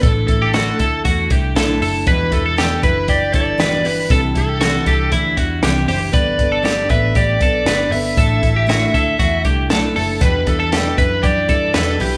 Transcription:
0.03 A1 A2 D3 A3 D4 E4 A4, kick, closed hi-hat
0.27 A1 A3 D4 E4 A4, kick, closed hi-hat
0.42 G4
0.54 A2 D3 A3 D4 E4 F#4, snare, closed hi-hat
0.79 D2 A3 D4 E4 A4, kick, closed hi-hat
1.05 E2 D3 A3 D4 E4 F#4, kick, closed hi-hat
1.30 C2 A3 D4 E4 G4, kick, closed hi-hat
1.55 B1 A2 D3 A3 D4 E4 A4, snare, closed hi-hat
1.80 F#1 A3 D4 E4 A4, open hi-hat
2.06 E1 E2 B2 E3 G3 D4 E4 B4, kick, closed hi-hat
2.31 E1 E3 G3 D4 E4 A4, kick, closed hi-hat
2.46 A4
2.57 E2 B2 E3 G3 D4 E4 G4, snare, closed hi-hat
2.83 F#1 E3 G3 D4 E4 B4, kick, closed hi-hat
3.07 F#1 E3 G3 D4 E4 G4 D5, kick, closed hi-hat
3.32 G1 E3 G3 D4 E4 A4 D5, kick, closed hi-hat
3.58 E2 B2 E3 G3 D4 E4 B4, snare, closed hi-hat
3.83 E3 G3 D4 E4 B4, open hi-hat
4.09 C2 C3 E3 G3 D4 E4 A4, kick, closed hi-hat
4.35 C2 G3 D4 E4 A4, kick, closed hi-hat
4.49 G4
4.60 C3 E3 G3 D4 E4 F#4, snare, closed hi-hat
4.85 C2 G3 D4 E4 G4, kick, closed hi-hat
5.10 D2 E3 G3 D4 E4, kick, closed hi-hat
5.37 E2 G3 D4 E4 F#4, kick, closed hi-hat
5.62 C2 C3 E3 G3 D4 E4 G4, snare, closed hi-hat
5.87 F#1 G3 D4 E4 G4 C5, open hi-hat
6.12 G1 G3 B3 D4 A4 B4 D5, kick, closed hi-hat
6.38 G1 B3 D4 A4, kick, closed hi-hat
6.52 A4
6.63 G3 B3 D4 G4 A4 D5, snare, closed hi-hat
6.89 A1 B3 D4 A4 B4 E5, kick, closed hi-hat
7.15 A1 G3 B3 D4 G4 A4 D5, kick, closed hi-hat
7.39 B1 B3 D4 A4, kick, closed hi-hat
7.65 G1 G3 B3 D4 A4 B4, snare, closed hi-hat
7.90 G1 B3 D4 A4 E5, open hi-hat
8.16 A1 A2 D3 A3 D4 E4 A4, kick, closed hi-hat
8.42 A1 A3 D4 E4, kick, closed hi-hat
8.56 G4
8.66 A2 D3 A3 D4 E4 F#4, snare, closed hi-hat
8.92 D2 A3 D4 E4 A4, kick, closed hi-hat
9.18 E2 D3 A3 D4 E4 F#4, kick, closed hi-hat
9.43 C2 A3 D4 E4 G4, kick, closed hi-hat
9.70 B1 A2 D3 A3 D4 E4 A4, snare, closed hi-hat
9.94 F#1 A3 D4 E4 A4, open hi-hat
10.20 E2 B2 E3 G3 D4 E4 B4, kick, closed hi-hat
10.46 E2 E3 G3 D4 E4 A4, kick, closed hi-hat
10.60 A4
10.72 E2 B2 E3 G3 D4 E4 G4, snare, closed hi-hat
10.97 F#2 E3 G3 D4 E4 B4, kick, closed hi-hat
11.22 F#2 E3 G3 D4 E4 G4 D5, kick, closed hi-hat
11.48 G2 E3 G3 D4 E4 A4, kick, closed hi-hat
11.74 E2 B2 E3 G3 D4 E4 A4 B4, snare, closed hi-hat
11.98 B1 E3 G3 D4 E4 G4, open hi-hat

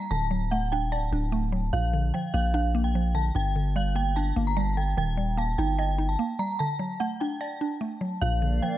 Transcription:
Already playing: G3 A#3 D#4 D#5
0.11 D1 D3 A5
0.31 F#3
0.51 A3 F#5
0.72 D4 G5
0.82 D#1
0.92 D5 A5
0.97 D1
1.12 D1 D4
1.32 A3
1.52 F#3
1.73 A#1 A#2 F5
1.93 D3
2.14 F3 G5
2.34 A#1 A#3 F5
2.54 D4 F5
2.75 A#3
2.84 G5
2.95 F3
3.15 D3 A5
3.35 G1 G2 G5
3.56 D3
3.76 G3 F5
3.95 A#3 G5
4.16 D4 A5
4.36 G1 A#3
4.47 A#5
4.57 G3 A5
4.77 D3 G5
4.97 D#1 D#3 G5
5.17 G3
5.37 A#3 A5
5.58 G1 D#4 G5
5.79 D#5 G5
5.98 D#4
6.09 A5
6.19 A#3
6.39 G3 A#5
6.59 D3 A5
6.79 F#3
7.00 A3 F#5
7.20 D4 G5
7.41 D5 A5
7.61 D4
7.81 A3
8.01 F#3
8.21 A#1 A#2 A#3 A#4 D5 F5
8.42 D3
8.62 F3 G5

